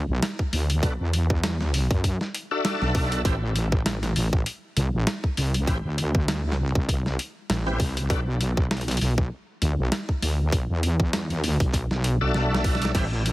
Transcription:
0.09 0.20 B1 loud
0.23 snare loud
0.23 closed hi-hat medium
0.39 kick medium
0.53 0.81 D2 medium
0.53 open hi-hat medium
0.70 closed hi-hat medium
0.83 0.97 B1 medium
0.83 0.93 D4 medium
0.83 0.93 F#4 medium
0.83 0.93 A4 medium
0.83 0.93 B4 medium
0.83 kick loud
0.83 closed hi-hat medium
1.00 1.88 E2 loud
1.13 closed hi-hat medium
1.30 kick loud
1.44 snare loud
1.44 closed hi-hat medium
1.61 snare soft
1.74 open hi-hat medium
1.91 2.18 F#2 loud
1.91 kick loud
1.91 closed hi-hat soft
2.04 kick medium
2.04 closed hi-hat medium
2.21 snare soft
2.35 closed hi-hat medium
2.51 3.22 D4 medium
2.51 3.22 F#4 medium
2.51 3.22 A4 medium
2.51 3.22 E5 loud
2.65 snare loud
2.65 closed hi-hat medium
2.82 2.93 B1 loud
2.82 snare soft
2.95 3.23 B1 loud
2.95 kick loud
2.95 open hi-hat medium
3.12 closed hi-hat medium
3.25 4.14 A1 medium
3.25 3.36 C4 medium
3.25 3.36 E4 medium
3.25 3.36 G4 medium
3.25 3.36 B4 medium
3.25 kick loud
3.25 closed hi-hat medium
3.56 closed hi-hat medium
3.72 kick loud
3.86 snare loud
3.86 closed hi-hat medium
4.03 snare soft
4.03 closed hi-hat soft
4.16 4.44 A1 loud
4.16 open hi-hat medium
4.33 kick loud
4.46 closed hi-hat medium
4.77 4.91 C2 loud
4.77 closed hi-hat medium
4.94 5.05 A1 loud
5.07 snare loud
5.07 closed hi-hat medium
5.24 kick medium
5.37 5.66 C2 medium
5.37 open hi-hat medium
5.54 closed hi-hat medium
5.67 5.82 A1 loud
5.67 5.78 C4 medium
5.67 5.78 E4 medium
5.67 5.78 G4 medium
5.67 5.78 B4 medium
5.67 kick loud
5.67 closed hi-hat medium
5.85 6.47 D2 loud
5.98 closed hi-hat medium
6.15 kick loud
6.28 snare loud
6.28 closed hi-hat medium
6.47 6.73 C#2 loud
6.52 snare soft
6.75 7.17 C2 loud
6.75 kick loud
6.89 kick medium
6.89 closed hi-hat medium
7.06 snare soft
7.19 closed hi-hat medium
7.50 7.78 A1 loud
7.50 snare loud
7.50 closed hi-hat medium
7.66 7.80 C4 medium
7.66 7.80 E4 medium
7.66 7.80 G4 medium
7.66 7.80 B4 loud
7.66 snare soft
7.80 8.08 C2 loud
7.80 kick loud
7.80 open hi-hat medium
7.97 closed hi-hat medium
8.10 8.99 B1 loud
8.10 8.20 D4 medium
8.10 8.21 F#4 medium
8.10 8.21 A4 medium
8.10 8.21 B4 loud
8.10 kick loud
8.10 closed hi-hat medium
8.41 closed hi-hat medium
8.57 kick loud
8.71 snare loud
8.71 closed hi-hat soft
8.77 closed hi-hat soft
8.81 closed hi-hat soft
8.88 snare soft
8.88 closed hi-hat medium
8.91 closed hi-hat medium
8.97 closed hi-hat medium
9.01 9.29 B1 loud
9.01 open hi-hat medium
9.18 kick loud
9.62 9.76 D2 loud
9.62 closed hi-hat medium
9.78 9.90 B1 loud
9.92 snare loud
9.92 closed hi-hat medium
10.09 kick medium
10.22 10.50 D2 loud
10.22 open hi-hat medium
10.52 10.67 B1 medium
10.52 kick loud
10.52 closed hi-hat medium
10.70 11.32 E2 loud
10.83 closed hi-hat medium
11.00 kick loud
11.13 snare loud
11.13 closed hi-hat medium
11.30 11.58 D#2 loud
11.30 closed hi-hat soft
11.44 open hi-hat medium
11.60 11.88 B1 loud
11.60 kick loud
11.60 closed hi-hat soft
11.74 kick medium
11.74 closed hi-hat medium
11.91 12.18 B1 loud
11.91 snare soft
12.04 closed hi-hat medium
12.21 12.32 B1 loud
12.21 12.92 D4 medium
12.21 12.92 F#4 medium
12.21 12.92 A4 medium
12.21 12.92 E5 loud
12.34 12.93 B1 loud
12.34 snare medium
12.55 snare medium
12.64 kick loud
12.64 open hi-hat medium
12.75 snare soft
12.82 snare medium
12.82 closed hi-hat medium
12.95 13.32 A1 medium
12.95 13.05 C4 medium
12.95 13.05 E4 medium
12.95 13.05 G4 medium
12.95 13.05 B4 loud
12.95 kick loud
12.95 snare medium
12.95 closed hi-hat medium
12.95 crash medium
13.26 closed hi-hat medium

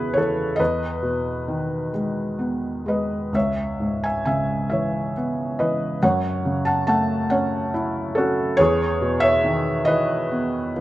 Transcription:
0.00 0.56 E2 medium
0.00 0.13 B2 soft
0.00 0.55 C#3 soft
0.00 0.15 E3 soft
0.00 0.57 B3 soft
0.00 0.62 E4 medium
0.00 0.62 G#4 medium
0.00 0.60 B4 medium
0.14 0.59 E3 medium
0.14 0.58 A4 medium
0.14 0.60 C#5 medium
0.56 3.30 E2 medium
0.56 1.90 B4 medium
0.56 1.88 D#5 medium
1.03 2.83 B2 soft
1.48 3.30 D#3 soft
1.93 2.84 G#3 soft
2.39 3.31 B3 soft
2.86 3.32 G#3 soft
2.86 3.32 B4 soft
2.86 3.36 D#5 medium
3.33 5.97 C#2 soft
3.33 4.01 C#5 soft
3.33 4.04 E5 medium
3.80 5.55 G#2 soft
4.04 4.25 E5 medium
4.04 4.24 G#5 medium
4.25 5.98 C#3 soft
4.25 4.68 E5 medium
4.25 4.68 G#5 medium
4.70 5.59 E3 soft
4.70 5.13 C#5 soft
4.70 5.12 E5 medium
5.17 6.00 B3 soft
5.59 6.01 E3 soft
5.59 5.99 B4 medium
5.59 5.99 D#5 medium
6.03 8.55 F#2 medium
6.03 6.63 C#5 medium
6.03 6.65 F#5 medium
6.45 8.13 C#3 soft
6.65 6.86 F#5 medium
6.65 6.85 A5 medium
6.87 8.55 A3 medium
6.87 7.29 F#5 medium
6.87 7.32 A5 medium
7.30 8.16 C#4 medium
7.30 7.72 C#5 medium
7.30 7.71 F#5 medium
7.74 8.57 E4 medium
8.15 8.58 C#4 medium
8.15 8.57 F#4 medium
8.15 8.55 A4 medium
8.57 10.81 E2 medium
8.57 9.19 G#4 medium
8.57 9.22 C#5 loud
9.01 10.72 B2 soft
9.20 9.84 C#5 medium
9.20 9.89 E5 loud
9.44 10.81 D#3 medium
9.85 10.75 E3 soft
9.85 10.81 B4 medium
9.85 10.81 D#5 loud
10.32 10.81 B3 soft
10.76 10.81 E3 medium

